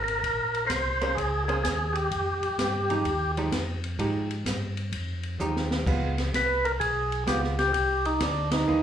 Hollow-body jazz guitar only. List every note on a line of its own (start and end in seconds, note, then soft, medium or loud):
1.02 1.16 A#3 medium
1.02 1.17 C#4 medium
1.02 1.17 G#4 medium
1.02 1.17 C5 medium
1.48 1.63 A#3 medium
1.48 1.63 C#4 medium
1.48 1.63 G#4 medium
1.48 1.63 C5 medium
2.90 3.04 F3 medium
2.90 3.04 G#3 medium
2.90 3.05 D#4 medium
2.90 3.05 G4 medium
3.37 3.51 F3 medium
3.37 3.52 G#3 medium
3.37 3.52 D#4 medium
3.37 3.52 G4 medium
3.99 4.27 F3 medium
3.99 4.27 G#3 medium
3.99 4.28 D#4 soft
3.99 4.28 G4 medium
5.40 5.68 F3 medium
5.40 5.69 G#3 medium
5.40 5.69 D#4 medium
5.40 5.68 G4 medium
5.87 6.15 G#3 medium
5.87 6.15 B3 medium
5.87 6.15 F4 medium
7.27 7.55 G#3 medium
7.27 7.56 B3 medium
7.27 7.56 F4 medium
8.68 8.83 E3 medium
8.68 8.83 A#3 medium
8.68 8.83 D#4 medium